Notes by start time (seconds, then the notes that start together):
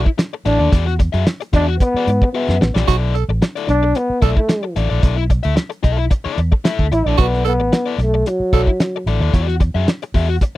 0.06 muted overdriven electric guitar stroke, kick
0.18 muted overdriven electric guitar stroke, snare, closed hi-hat
0.33 muted overdriven electric guitar stroke
0.45 A1 D4 E4 A4 D5, closed hi-hat
0.59 D#2 E4 A4 D5
0.72 E2 F#4 G#4 D5, kick, closed hi-hat
0.87 muted overdriven electric guitar stroke, snare
0.99 muted overdriven electric guitar stroke, kick, closed hi-hat
1.13 F#2 F#4 G#4 E5, closed hi-hat
1.26 muted overdriven electric guitar stroke, snare, closed hi-hat
1.41 muted overdriven electric guitar stroke, closed hi-hat
1.53 E2 D4 F#4 G#4 E5, kick, snare, closed hi-hat
1.69 muted overdriven electric guitar stroke
1.79 B3, muted overdriven electric guitar stroke, kick, closed hi-hat
1.94 F#4 G#4 D5, muted fingered electric bass stroke
2.07 G#2, muted overdriven electric guitar stroke, closed hi-hat
2.22 muted overdriven electric guitar stroke, kick
2.33 B3 F#4 G#4 E5
2.49 F#2, snare
2.61 A1, muted overdriven electric guitar stroke, snare
2.75 A#1 F#4 G#4 D5, snare
2.87 B1 D#4 F#4 A4 D5, kick, closed hi-hat
2.98 E4
3.14 A4, closed hi-hat
3.29 A1, muted overdriven electric guitar stroke
3.42 muted overdriven electric guitar stroke, snare, closed hi-hat
3.56 E4 A4 D5, closed hi-hat
3.69 B1 D4, muted overdriven electric guitar stroke, snare, closed hi-hat
3.83 muted overdriven electric guitar stroke
3.95 B3, muted overdriven electric guitar stroke, closed hi-hat
4.10 muted fingered electric bass stroke
4.22 B1 A3 E4 A4 D5, kick, closed hi-hat
4.37 A3, muted overdriven electric guitar stroke, kick
4.49 muted overdriven electric guitar stroke, snare, closed hi-hat
4.63 muted overdriven electric guitar stroke
4.76 A1 E4 A4 D5, closed hi-hat
4.90 A#1 E4 A4 D5
5.02 B1 E4 A4 D5, kick, closed hi-hat
5.17 muted overdriven electric guitar stroke
5.30 muted overdriven electric guitar stroke, kick, closed hi-hat
5.43 D2 E4 A4 E5, closed hi-hat
5.55 muted overdriven electric guitar stroke, snare, closed hi-hat
5.70 muted overdriven electric guitar stroke, closed hi-hat
5.83 B1 E4 A4 E5, kick, closed hi-hat
5.98 muted overdriven electric guitar stroke
6.11 muted overdriven electric guitar stroke, kick, closed hi-hat
6.25 E4 A4 D5, muted fingered electric bass stroke
6.38 E2, muted overdriven electric guitar stroke, closed hi-hat
6.52 muted overdriven electric guitar stroke, kick
6.64 E4 A4 E5, snare, closed hi-hat
6.79 D2, kick
6.91 A1 E4, muted overdriven electric guitar stroke, closed hi-hat
7.06 A#1 D4 E4 A4 D5
7.18 B1 B3 E4 F#4 A4 D5, kick, closed hi-hat
7.34 snare
7.45 B3 A4, closed hi-hat
7.59 A1, muted overdriven electric guitar stroke
7.72 muted overdriven electric guitar stroke, snare, closed hi-hat
7.86 E4 A4 D5
7.98 B1 A3, muted overdriven electric guitar stroke, snare, closed hi-hat
8.14 muted overdriven electric guitar stroke
8.26 F#3, muted overdriven electric guitar stroke, closed hi-hat
8.40 muted fingered electric bass stroke
8.53 B1 E4 A4 D5, kick, closed hi-hat
8.67 muted overdriven electric guitar stroke, kick
8.80 muted overdriven electric guitar stroke, snare, closed hi-hat
8.96 muted overdriven electric guitar stroke
9.06 A1 E4 A4 D5, closed hi-hat
9.20 D#2 E4 A4 D5
9.33 E2 F#4 G#4 D5, kick, closed hi-hat
9.48 muted overdriven electric guitar stroke, snare
9.60 muted overdriven electric guitar stroke, kick, closed hi-hat
9.75 F#2 F#4 G#4 E5
9.88 muted overdriven electric guitar stroke, snare, closed hi-hat
10.02 muted overdriven electric guitar stroke, closed hi-hat
10.14 E2 F#4 G#4 E5, kick, open hi-hat
10.29 muted overdriven electric guitar stroke
10.41 muted overdriven electric guitar stroke, kick, closed hi-hat